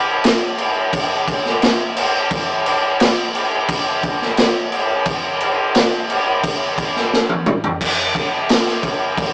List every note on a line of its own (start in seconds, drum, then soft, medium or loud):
0.24 snare loud
0.24 crash medium
0.58 crash medium
0.93 kick loud
0.93 crash medium
1.28 kick loud
1.28 crash medium
1.46 snare soft
1.62 snare loud
1.62 crash medium
1.97 crash medium
2.31 kick loud
2.31 crash medium
2.66 crash medium
3.00 snare loud
3.00 crash medium
3.35 crash medium
3.68 kick medium
3.68 crash medium
4.03 kick medium
4.03 crash medium
4.22 snare soft
4.37 snare loud
4.37 crash medium
4.72 crash medium
5.05 kick loud
5.05 crash medium
5.40 crash medium
5.75 snare loud
5.75 crash medium
6.10 crash medium
6.44 kick medium
6.44 crash medium
6.78 kick loud
6.78 crash medium
6.96 snare soft
7.13 snare medium
7.29 high tom medium
7.46 mid tom loud
7.64 floor tom loud
7.81 kick loud
7.81 crash loud
7.81 crash medium
8.15 kick loud
8.15 crash medium
8.49 snare loud
8.49 crash medium
8.68 snare soft
8.83 kick medium
8.83 crash medium
9.18 kick loud
9.18 crash medium